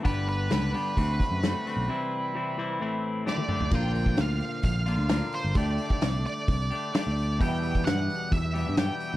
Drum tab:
CC |----------------|----------------|x---------------|----------------|
HH |o-o-o-o-o-o-o-o-|----------------|--o-o-o-o-o-o-o-|o-o-o-o-o-o-o-o-|
SD |----o-------o---|------------o---|----o-------o---|----o-------o---|
T1 |----------------|-------------o--|----------------|----------------|
T2 |----------------|--------------o-|----------------|----------------|
FT |----------------|---------------o|----------------|----------------|
BD |o-------o-o-----|----------------|o--o----o-------|o--o----o-------|

CC |----------------|
HH |o-o-o-o-o-o-o-o-|
SD |----o-------o---|
T1 |----------------|
T2 |----------------|
FT |----------------|
BD |o--o----o-------|